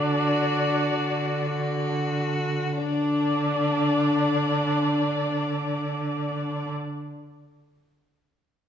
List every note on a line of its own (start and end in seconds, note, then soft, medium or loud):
0.00 0.70 D3 soft
0.00 2.17 D4 medium
0.00 1.49 F#4 soft
0.00 2.17 D5 medium
0.92 2.59 D3 medium
1.54 2.79 F#4 soft
2.80 6.71 D3 medium
2.80 6.70 D4 medium
2.80 6.71 D4 medium
2.80 6.70 D5 medium